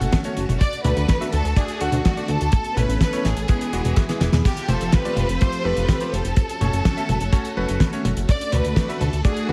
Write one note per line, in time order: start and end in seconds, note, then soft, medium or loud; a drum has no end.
0.00 0.10 F#1 medium
0.00 0.19 A3 loud
0.00 0.59 A3 medium
0.00 0.19 C#4 loud
0.00 0.59 C#4 medium
0.00 0.19 F#4 medium
0.00 2.49 F#4 medium
0.00 0.37 A4 loud
0.00 0.19 F#5 loud
0.00 closed hi-hat medium
0.00 high tom medium
0.12 kick loud
0.12 snare loud
0.12 closed hi-hat medium
0.24 0.59 A3 medium
0.24 0.59 C#4 medium
0.24 0.59 F#4 medium
0.24 0.59 C#5 loud
0.24 closed hi-hat medium
0.37 0.46 F#1 medium
0.37 closed hi-hat medium
0.49 0.58 F#1 medium
0.49 closed hi-hat medium
0.49 high tom medium
0.61 2.51 A3 medium
0.61 2.51 D4 medium
0.61 0.83 D5 loud
0.61 kick loud
0.61 closed hi-hat loud
0.73 closed hi-hat medium
0.84 0.94 D2 medium
0.84 1.18 A3 medium
0.84 1.18 D4 medium
0.84 1.18 F#4 medium
0.84 1.30 B4 loud
0.84 1.18 D5 medium
0.84 closed hi-hat medium
0.84 high tom medium
0.97 1.06 D2 medium
0.97 closed hi-hat medium
1.08 kick loud
1.08 snare loud
1.08 closed hi-hat loud
1.21 1.40 A3 medium
1.21 1.40 D4 medium
1.21 1.40 F#4 medium
1.21 1.40 E5 loud
1.21 closed hi-hat medium
1.33 1.42 D2 loud
1.33 1.55 A4 loud
1.33 closed hi-hat medium
1.45 1.54 D2 medium
1.45 closed hi-hat medium
1.56 1.79 A3 medium
1.56 1.79 D4 medium
1.56 1.78 F#4 medium
1.56 1.81 G#4 loud
1.56 1.78 D5 loud
1.56 kick loud
1.56 closed hi-hat medium
1.68 closed hi-hat medium
1.81 1.90 D2 medium
1.81 2.11 A3 loud
1.81 2.11 D4 medium
1.81 2.11 F#4 medium
1.81 2.04 F#4 medium
1.81 2.11 F#5 loud
1.81 closed hi-hat medium
1.92 2.02 D2 medium
1.92 closed hi-hat medium
1.92 high tom medium
2.05 2.27 F#4 medium
2.05 kick loud
2.05 snare loud
2.05 closed hi-hat medium
2.17 2.52 A3 medium
2.17 2.51 D4 medium
2.17 2.51 F#4 medium
2.17 2.51 D5 medium
2.17 closed hi-hat medium
2.28 2.38 D2 medium
2.28 2.77 A4 loud
2.28 closed hi-hat medium
2.41 2.50 D2 medium
2.41 closed hi-hat medium
2.52 4.43 B3 medium
2.52 3.48 C#4 medium
2.52 3.48 A4 medium
2.52 kick loud
2.52 closed hi-hat medium
2.64 closed hi-hat medium
2.77 2.86 A1 medium
2.77 3.10 A3 medium
2.77 3.10 C#4 medium
2.77 3.10 E4 medium
2.77 3.00 B4 loud
2.77 3.10 B4 medium
2.77 closed hi-hat medium
2.77 high tom medium
2.89 2.98 A1 medium
2.89 closed hi-hat medium
3.01 3.23 B4 loud
3.01 kick loud
3.01 snare loud
3.01 closed hi-hat loud
3.13 3.32 A3 medium
3.13 3.32 C#4 medium
3.13 3.32 E4 medium
3.13 3.32 C#5 loud
3.13 closed hi-hat medium
3.25 3.34 A1 loud
3.25 4.21 G#4 medium
3.25 snare medium
3.25 closed hi-hat medium
3.37 3.46 A1 medium
3.37 closed hi-hat medium
3.48 3.71 E3 medium
3.48 3.71 G#3 medium
3.48 3.71 B3 medium
3.48 4.44 E4 medium
3.48 3.71 G#4 loud
3.48 4.44 G#4 medium
3.48 kick loud
3.48 closed hi-hat medium
3.61 closed hi-hat medium
3.73 3.82 E1 medium
3.73 4.03 E3 medium
3.73 4.03 G#3 medium
3.73 4.03 B3 medium
3.73 4.03 F#4 loud
3.73 closed hi-hat medium
3.84 3.94 E1 medium
3.84 closed hi-hat medium
3.84 high tom medium
3.96 kick loud
3.96 snare medium
3.96 closed hi-hat medium
4.09 4.28 E3 medium
4.09 4.28 G#3 medium
4.09 4.28 B3 medium
4.09 4.28 G#4 loud
4.09 snare medium
4.09 closed hi-hat medium
4.21 4.30 E1 medium
4.21 snare medium
4.21 closed hi-hat medium
4.21 high tom medium
4.32 4.42 E2 medium
4.32 snare medium
4.32 closed hi-hat medium
4.32 high tom medium
4.45 6.35 F3 medium
4.45 6.35 C4 medium
4.45 6.35 F4 medium
4.45 6.35 G4 medium
4.45 4.67 G4 loud
4.45 6.35 A4 medium
4.45 kick loud
4.45 closed hi-hat loud
4.45 crash loud
4.57 closed hi-hat medium
4.68 4.78 F1 medium
4.68 5.02 A3 medium
4.68 5.02 F4 medium
4.68 5.02 G4 medium
4.68 4.93 A4 loud
4.68 5.02 C5 medium
4.68 closed hi-hat medium
4.68 high tom loud
4.81 4.90 F1 medium
4.81 closed hi-hat medium
4.92 5.41 B4 loud
4.92 kick loud
4.92 snare loud
4.92 closed hi-hat loud
5.05 5.24 A3 medium
5.05 5.24 F4 medium
5.05 5.24 G4 medium
5.05 5.24 D5 loud
5.05 closed hi-hat medium
5.16 5.26 F1 loud
5.16 closed hi-hat medium
5.16 high tom medium
5.29 5.38 F1 medium
5.29 closed hi-hat medium
5.41 5.63 A3 medium
5.41 5.63 F4 medium
5.41 5.63 G4 medium
5.41 5.65 C5 loud
5.41 5.63 C5 loud
5.41 kick loud
5.41 closed hi-hat loud
5.52 closed hi-hat medium
5.65 5.74 F1 loud
5.65 5.95 A3 loud
5.65 5.95 F4 medium
5.65 5.95 G4 medium
5.65 5.95 A4 loud
5.65 6.13 B4 loud
5.77 5.86 F1 medium
5.77 closed hi-hat medium
5.89 kick loud
5.89 snare loud
5.89 closed hi-hat loud
6.00 6.20 A3 medium
6.00 6.20 F4 medium
6.00 6.20 G4 medium
6.00 6.20 C5 loud
6.00 closed hi-hat medium
6.13 6.22 F1 medium
6.13 8.05 A4 loud
6.13 closed hi-hat medium
6.25 6.34 F1 medium
6.25 closed hi-hat medium
6.36 9.53 A3 medium
6.36 8.27 C#4 medium
6.36 8.27 F#4 medium
6.36 kick loud
6.36 closed hi-hat loud
6.49 closed hi-hat medium
6.61 6.70 F#1 medium
6.61 6.94 A3 medium
6.61 6.94 C#4 medium
6.61 6.94 F#4 medium
6.61 6.94 C#5 medium
6.61 closed hi-hat medium
6.61 high tom medium
6.73 6.82 F#1 medium
6.73 closed hi-hat medium
6.85 kick loud
6.85 snare loud
6.85 closed hi-hat loud
6.97 7.16 A3 medium
6.97 7.16 C#4 medium
6.97 7.16 F#4 medium
6.97 7.16 E5 loud
6.97 closed hi-hat medium
7.09 7.18 F#1 loud
7.09 closed hi-hat medium
7.09 high tom medium
7.20 7.30 F#1 medium
7.20 closed hi-hat medium
7.33 7.55 A3 medium
7.33 7.55 C#4 medium
7.33 7.55 F#4 medium
7.33 7.55 C#5 loud
7.33 kick loud
7.33 closed hi-hat loud
7.45 closed hi-hat medium
7.57 7.66 F#1 medium
7.57 7.87 A3 loud
7.57 7.87 C#4 medium
7.57 7.87 F#4 medium
7.57 7.87 B4 loud
7.69 7.78 F#1 medium
7.69 closed hi-hat medium
7.80 kick loud
7.80 snare loud
7.80 closed hi-hat loud
7.93 8.12 A3 medium
7.93 8.12 C#4 medium
7.93 8.12 F#4 medium
7.93 8.12 C#5 loud
7.93 closed hi-hat medium
8.05 8.14 F#1 medium
8.05 closed hi-hat medium
8.05 high tom medium
8.17 8.26 F#1 medium
8.17 closed hi-hat medium
8.29 9.53 D4 medium
8.29 9.53 F#4 medium
8.29 8.51 D5 loud
8.29 kick loud
8.29 closed hi-hat loud
8.41 closed hi-hat medium
8.52 8.62 D2 medium
8.52 8.86 A3 medium
8.52 8.86 D4 medium
8.52 8.86 F#4 medium
8.52 9.01 B4 loud
8.52 8.86 D5 medium
8.52 closed hi-hat medium
8.52 high tom medium
8.65 8.74 D2 medium
8.65 closed hi-hat medium
8.76 kick loud
8.76 snare loud
8.76 closed hi-hat loud
8.89 9.08 A3 medium
8.89 9.08 D4 medium
8.89 9.08 F#4 medium
8.89 9.08 E5 loud
8.89 closed hi-hat medium
9.00 9.10 D2 loud
9.00 9.25 A4 loud
9.00 closed hi-hat medium
9.00 high tom medium
9.13 9.22 D2 medium
9.13 closed hi-hat medium
9.25 9.46 A3 medium
9.25 9.46 D4 medium
9.25 9.47 F#4 medium
9.25 9.47 G#4 loud
9.25 9.46 D5 loud
9.25 kick loud
9.25 closed hi-hat loud
9.37 closed hi-hat medium
9.49 9.53 D2 medium
9.49 9.53 A3 medium
9.49 9.53 D4 medium
9.49 9.53 F#4 medium
9.49 9.53 B4 loud